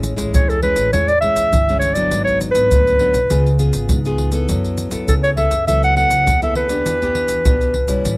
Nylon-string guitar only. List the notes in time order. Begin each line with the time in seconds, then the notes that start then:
Already playing: A2 G#3 C#4 E4
0.16 G#3 C#4 E4
0.34 E3
0.63 G#3 C#4 E4
0.93 A2 G#3 C#4 E4
1.22 G#3 C#4 E4
1.53 E3
1.69 G#3 C#4 E4
1.96 F#3 B3 D4
2.12 G#2
2.55 F#3 B3 D4
2.72 G#2
2.99 F#3 B3 D4
3.30 C#3 B3 F4 G#4
3.59 B3 F4 G#4
3.90 G#2
4.05 B3 F4 G#4
4.32 B3 E4 A4
4.49 F#3
4.91 B3 E4 A4
5.08 C#3
5.37 B3 E4 A4
5.67 F#3 B3 E4 A4
5.96 B3 E4 A4
6.26 C#3
6.42 B3 E4 A4
6.70 B3 D4 G4
6.86 E3
7.02 B3 D4 G4
7.45 B2 B3 D4 G4
7.88 G3 C#4 E4
8.05 A2